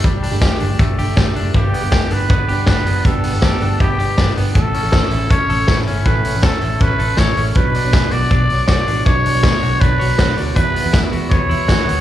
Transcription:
<<
  \new Staff \with { instrumentName = "Trumpet" } { \time 4/4 \key g \lydian \tempo 4 = 160 r1 | g'4. b'4. b'4 | a'2 g'4. r8 | a'2 cis''4. r8 |
b'4 a'4 b'4 cis''8. r16 | b'4. d''4. d''4 | cis''2 b'4. r8 | b'4. r8 cis''2 | }
  \new Staff \with { instrumentName = "Clean electric guitar" } { \time 4/4 \key g \lydian g8 d'8 g'8 d'8 a8 g'8 a8 d'8 | g,8 b8 g'8 d'8 b8 g'8 d'8 b8 | g,8 b8 g'8 d'8 b8 g'8 d'8 b8 | a,8 cis'8 a'8 e'8 cis'8 a'8 e'8 cis'8 |
a,8 cis'8 a'8 e'8 cis'8 a'8 e'8 cis'8 | b,8 d'4 fis'8 d'4 fis'8 d'8 | b,8 d'8 b'16 cis''16 fis'8 d'8 cis''8 fis'8 d'8 | e,8 b8 e'8 fis'8 b8 e'8 fis'8 b8 | }
  \new Staff \with { instrumentName = "Steel-string acoustic guitar" } { \time 4/4 \key g \lydian <g a d' g'>8. <g a d' g'>4 <a d' g'>8. <g a d' g'>8. <a d' g'>8. | <g, d g b d' g'>8. <g b d' g'>8 <g b d' g'>4~ <g b d' g'>16 <g b d' g'>8 <g b d' g'>8 <g b d' g'>8 | <g, d g b d' g'>8. <g b d' g'>8 <g b d' g'>4~ <g b d' g'>16 <g b d' g'>8 <g b d' g'>8 <g b d' g'>8 | <a, a cis' e' a'>8. <cis' e' a'>8 <cis' e' a'>4~ <cis' e' a'>16 <a cis' e' a'>8 <a cis' e' a'>8 <a cis' e' a'>8 |
<a, a cis' e' a'>8. <cis' e' a'>8 <cis' e' a'>4~ <cis' e' a'>16 <a cis' e' a'>8 <a cis' e' a'>8 <a cis' e' a'>8 | <b, fis b d' fis' cis''>8. <b d' fis' cis''>8 <b d' fis'>4~ <b d' fis'>16 <b d' fis' cis''>8 <b d' fis' cis''>8 <b d' fis' cis''>8 | <b, fis b d' fis' cis''>8. <b d' fis' cis''>8 <b d' fis' cis''>4~ <b d' fis' cis''>16 <b d' fis' cis''>8 <b d' fis' cis''>8 <b d' fis' cis''>8 | <e, e g b e' fis'>8. <g b e' fis'>8 <g b e' fis'>4~ <g b e' fis'>16 <g b e' fis'>8 <g b e' fis'>8 <g b e' fis'>8 | }
  \new Staff \with { instrumentName = "Fingered electric bass" } { \clef bass \time 4/4 \key g \lydian g,,8 r16 g,,8 r16 g,,8 g,,8 g,,8 g,,8 fis,,8 | g,,8 r16 g,,8 r16 g,,8 g,,8 g,,8 g,,8 fis,,8 | g,,8 r16 g,,8 r16 g,,8 g,,8 g,,8 g,,8 g,,8 | a,,8 r16 a,,8 r16 a,,8 a,,8 a,,8 a,,8 g,,8 |
a,,8 r16 a,,8 r16 a,,8 a,,8 a,,8 a,,8 a,,8 | b,,8 r16 b,,8 r16 b,,8 b,,8 b,,8 b,,8 a,,8 | b,,8 r16 b,,8 r16 b,,8 b,,8 b,,8 b,,8 d,8 | e,8 r16 e,8 r16 e,8 e,8 e,8 e,8 d,8 | }
  \new DrumStaff \with { instrumentName = "Drums" } \drummode { \time 4/4 <hh bd>8 hho8 <hh bd sn>8 hho8 <hh bd>8 hho8 <hh bd sn>8 hho8 | <hh bd>8 hho8 <hh bd sn>8 hho8 <hh bd>8 hho8 <hh bd sn>8 hho8 | <hh bd>8 hho8 <hh bd sn>8 hho8 <hh bd>8 hho8 <hh bd sn>8 hho8 | <hh bd>8 hho8 <hh bd sn>8 hho8 <hh bd>8 hho8 <bd sn>8 hho8 |
<hh bd>8 hho8 <hh bd sn>8 hho8 <hh bd>8 hho8 <hh bd sn>8 hho8 | <hh bd>8 hho8 <bd sn>8 hho8 <hh bd>8 hho8 <hh bd sn>8 hho8 | <hh bd>8 hho8 <hh bd sn>8 hho8 <hh bd>8 hho8 <hh bd sn>8 hho8 | <hh bd>8 hho8 <hh bd sn>8 hho8 <hh bd>8 hho8 <hh bd sn>8 hho8 | }
>>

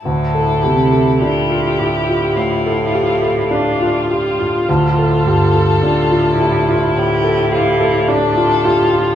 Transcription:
<<
  \new Staff \with { instrumentName = "Violin" } { \time 4/4 \key d \minor \tempo 4 = 52 a'4 g'4 f'4 f'4 | a'2 g'8 f'8 a'4 | }
  \new Staff \with { instrumentName = "Grand piano" } { \time 4/4 \key d \minor d,16 a'16 g'16 a'16 d'16 f'16 g'16 f'16 a,16 a'16 g'16 a'16 d'16 f'16 g'16 f'16 | d,16 a'16 g'16 a'16 d'16 f'16 g'16 f'16 a,16 a'16 g'16 a'16 d'16 f'16 g'16 f'16 | }
  \new Staff \with { instrumentName = "Viola" } { \time 4/4 \key d \minor e'2. d'8 f'8~ | f'4 f'8 e'4. d'8 f'8 | }
  \new Staff \with { instrumentName = "Cello" } { \clef bass \time 4/4 \key d \minor a,8 c8 bes,8 a,2~ a,8 | a,8 g,8 a,4 a,2 | }
>>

